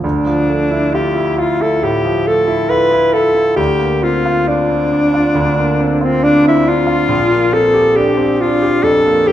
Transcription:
0.04 grand piano D2, alto saxophone D4
0.26 grand piano F3
0.50 grand piano A3
0.71 grand piano E4
0.94 grand piano F4, alto saxophone G4
1.16 grand piano E4
1.38 grand piano F4, alto saxophone F4
1.61 grand piano E4, alto saxophone A4
1.83 grand piano A2, alto saxophone G4
2.05 grand piano F3
2.27 grand piano A3, alto saxophone A4
2.48 grand piano E4
2.70 grand piano F4, alto saxophone B4
2.92 grand piano E4
3.13 grand piano F4, alto saxophone A4
3.34 grand piano E4
3.56 grand piano D2, alto saxophone G4
3.79 grand piano A#3
4.02 grand piano C4, alto saxophone F4
4.26 grand piano F4
4.47 grand piano D4, alto saxophone D4
4.70 grand piano C4
4.93 grand piano D4
5.14 grand piano F4
5.35 grand piano D2
5.57 grand piano A#3
5.80 grand piano C4
6.01 alto saxophone C4, grand piano F4
6.23 grand piano D4, alto saxophone D4
6.44 grand piano C4, alto saxophone E4
6.66 grand piano D4, alto saxophone F4
6.87 grand piano F4
7.08 grand piano A#1
7.30 grand piano A#3
7.52 grand piano C4, alto saxophone A4
7.74 grand piano G4
7.96 grand piano D4, alto saxophone G4
8.17 grand piano C4
8.41 grand piano D4, alto saxophone F4
8.62 grand piano G4
8.83 grand piano F2, alto saxophone A4
9.06 grand piano A#3
9.26 grand piano C4, alto saxophone G4

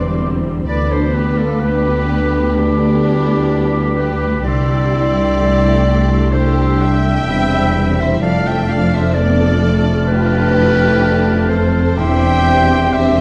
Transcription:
Already playing: double bass section E1, cello section E2, harp E2 C3 D3 E3 G3 C4, french horn section C3 D4, viola section G3 C4, violin section B4 D5, clarinet D5, oboe C6, flute section D6
0.20 harp D4
0.43 harp E3
0.67 double bass section D2, cello section D2, harp D3, viola section B3 D4, french horn section D4 B4, violin section B4 D5, clarinet D5, oboe B5, flute section D6
0.91 harp B3, violin section A4 C5, clarinet C5
1.13 harp C4, violin section G4 B4, clarinet B4
1.37 harp B3, violin section F4 A4, clarinet A4
1.59 viola section B3 D4, violin section G4 B4, clarinet B4, oboe B5, flute section D6
1.85 harp B3
2.10 harp G4
2.55 harp D3, viola section A3 B3, violin section D4 G4, clarinet G4, oboe B5, flute section D6
3.05 viola section G3, harp E4
3.28 harp B3
3.50 harp A3, viola section B3
3.75 harp B3
3.96 viola section D4, violin section G4 B4, harp G4, clarinet B4
4.22 harp B3
4.43 double bass section C2, cello section C2, harp C3, viola section G3 E4, french horn section G3 D4, violin section G4 D5, clarinet D5, oboe C6, flute section E6
4.69 harp G3
4.92 harp A3
5.15 harp G3
5.38 harp F3, viola section A3 E4
5.61 harp G3
5.85 viola section D4, harp E4
6.09 harp G3
6.32 harp C3, violin section G4 C5, clarinet C5, oboe C6, flute section E6
6.57 harp C4
6.82 violin section E5 G5, clarinet G5
7.05 harp G3
7.28 double bass section E1, cello section E2, viola section G3 C4, harp F4, oboe B5
7.75 viola section C4, harp E4
7.98 harp G3, violin section C5 E5, clarinet E5
8.21 double bass section F1, cello section F2, harp F3, french horn section F3 A3, viola section A3 D4, violin section D5 F5, clarinet F5, oboe A5, flute section F6
8.46 harp C4, violin section E5 G5, clarinet G5
8.68 harp D4, violin section D5 F5, clarinet F5
8.94 violin section C5 E5, clarinet E5
9.14 harp B3, viola section B3, violin section A4 D5, clarinet D5, oboe A5, flute section F6
9.39 harp C4
9.63 viola section A3
9.85 harp C4
10.07 harp F3, viola section D4 F4, violin section G4 B4, clarinet B4
10.31 harp F4
10.54 viola section E4, harp G4
10.77 harp C4
11.01 viola section D4
11.25 harp C4
11.48 viola section C4, violin section A4 C5, clarinet C5
11.73 harp C4
11.96 double bass section E1, cello section E2, harp E3, viola section C4 E4, french horn section C4 D4, violin section E5 G5, clarinet G5, oboe C6, flute section D6
12.21 harp C4
12.45 harp D4, viola section G4
12.70 harp C4
12.92 violin section C5 E5, clarinet E5, oboe C6, flute section D6

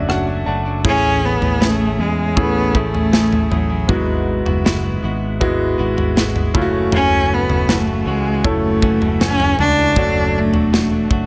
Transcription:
Already playing: fingered electric bass F#1, cello A3, grand piano C#4 D4 F#4 D5 E5
0.08 clean electric guitar F#2 C#3 F#3 A3 D4 F#4, grand piano F#5, cross-stick
0.27 clean electric guitar F#3 A3 D4 F#4
0.46 fingered electric bass F#1, clean electric guitar F#3 A3 D4 F#4, grand piano A5
0.65 clean electric guitar F#3 A3 D4 F#4
0.84 fingered electric bass A1, grand piano A2 E3 C#4 E4 G#4, clean electric guitar A3 C#4 E4 G#4, cello C#4, kick, floor tom, crash
1.25 cello B3
1.41 fingered electric bass A1, clean electric guitar C#4 E4 G#4, floor tom
1.60 clean electric guitar A3 C#4 E4 G#4, cello A3, snare
1.98 fingered electric bass E2, cello G#3, clean electric guitar C#4 E4 G#4
2.36 fingered electric bass A1, grand piano A3 C#4 E4 G#4, cello B3, kick, floor tom
2.74 clean electric guitar A3 C#4 E4 G#4, cello A3, kick
2.94 clean electric guitar C#4 E4 G#4, floor tom
3.12 clean electric guitar A3 C#4 E4 G#4, snare
3.33 floor tom
3.50 fingered electric bass A1, cello F#3, clean electric guitar A3 C#4 E4 G#4, floor tom
3.70 clean electric guitar C#4 E4 G#4
3.88 fingered electric bass G#1, grand piano G#2 G#3 B3 E4 F#4, clean electric guitar G#3 B3 E4 F#4, kick, floor tom
4.46 fingered electric bass F#1, clean electric guitar B3 E4 F#4, floor tom
4.65 clean electric guitar G#3 B3 E4 F#4, snare
4.84 clean electric guitar B3 E4 F#4
5.03 fingered electric bass G#1, clean electric guitar G#3 B3 E4 F#4
5.41 grand piano G#3 B3 E4 F#4, kick, floor tom
5.78 fingered electric bass G#1, clean electric guitar G#3 B3 E4 F#4
5.97 clean electric guitar B3 E4 F#4, floor tom
6.16 clean electric guitar G#3 B3 E4 F#4, snare
6.36 floor tom
6.54 fingered electric bass F#1, grand piano C#3 A3 C#4 E4 F4, clean electric guitar E3 A3 C#4 F#4, kick
6.62 grand piano F#4
6.73 clean electric guitar E3 A3 C#4 F#4
6.92 clean electric guitar F#2 C#3 E3 A3 C#4 F#4, cello C#4, floor tom
7.33 cello B3
7.49 fingered electric bass F#1, clean electric guitar E3 A3 C#4 F#4, floor tom
7.68 clean electric guitar F#2 C#3 E3 A3 C#4 F#4, cello A3, snare
7.87 clean electric guitar E3 A3 C#4 F#4
8.06 fingered electric bass C#2, clean electric guitar E3 C#4 F#4, cello G#3
8.44 fingered electric bass F#1, grand piano A3 E4 A4 C#5, cello A3, kick, floor tom
8.82 clean electric guitar E3 A3 C#4 F#4, kick
9.01 clean electric guitar E3 A3 C#4 F#4, floor tom
9.20 clean electric guitar F#2 C#3 E3 A3 C#4 F#4, cello C#4, snare
9.40 floor tom
9.58 fingered electric bass C#2, clean electric guitar E3 A3 C#4 F#4, cello D4, floor tom
9.77 clean electric guitar E3 A3 F#4
9.96 fingered electric bass F#1, clean electric guitar F#2 F#3 A3 D4 F#4, grand piano F#3 A3 D4 F#4 C#5, kick, floor tom
10.37 cello A3
10.53 fingered electric bass E1, clean electric guitar F#3 A3 D4 F#4, floor tom
10.73 clean electric guitar F#2 C#3 F#3 A3 D4 F#4, snare
10.92 clean electric guitar F#3 A3 D4 F#4
11.11 fingered electric bass F#1, clean electric guitar F#3 A3 D4 F#4, kick

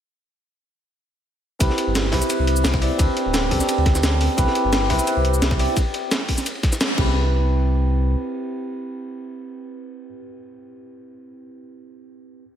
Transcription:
1.59 sub bass C2, tine electric piano C4 E4 G4 B4, kick, closed hi-hat, ride, shaker
1.70 snare
1.78 closed hi-hat, ride
1.87 sub bass G1
1.95 snare, closed hi-hat, ride, shaker
2.04 snare
2.11 sub bass C2, tine electric piano C4 E4 G4 B4, kick, snare, open hi-hat, ride
2.21 ride, shaker
2.30 closed hi-hat, ride, shaker
2.39 sub bass C2
2.47 closed hi-hat, ride
2.56 shaker
2.64 sub bass C2, snare, closed hi-hat, ride, shaker
2.74 kick, snare
2.81 tine electric piano C4 E4 G4 D5, open hi-hat, ride
2.98 sub bass D2, tine electric piano C4 D4 G4 B4, kick, closed hi-hat, ride, shaker
3.17 closed hi-hat, ride
3.26 sub bass D1
3.34 snare, closed hi-hat, ride, shaker
3.51 sub bass D2, tine electric piano C4 D4 G4 A4, kick, open hi-hat, ride
3.61 snare, shaker
3.69 closed hi-hat, ride, shaker
3.78 sub bass D2, ride
3.86 kick, snare, closed hi-hat, ride
3.95 snare, shaker
4.03 sub bass D2, snare, closed hi-hat, ride, shaker
4.21 open hi-hat, ride
4.37 sub bass C2, tine electric piano C4 E4 G4 B4, kick, closed hi-hat, ride, shaker
4.47 snare
4.55 closed hi-hat, ride
4.65 sub bass G1
4.73 snare, closed hi-hat, ride, shaker
4.83 snare
4.89 sub bass C2, tine electric piano C4 E4 G4 B4, kick, snare, open hi-hat, ride
4.99 ride, shaker
5.07 closed hi-hat, ride, shaker
5.16 sub bass C2
5.25 closed hi-hat
5.34 shaker
5.42 sub bass C2, snare, closed hi-hat, ride, shaker
5.51 kick, snare
5.59 tine electric piano C4 E4 G4 D5, open hi-hat, ride
5.77 kick, closed hi-hat, ride, shaker
5.94 closed hi-hat, ride
6.11 snare, closed hi-hat, ride, shaker
6.28 kick, open hi-hat, ride
6.38 snare, shaker
6.46 closed hi-hat, ride, shaker
6.55 ride
6.63 kick, snare, closed hi-hat, ride
6.73 snare, shaker
6.81 snare, closed hi-hat, ride, shaker
6.96 sub bass C2, tine electric piano C4 E4 G4 B4, kick, crash

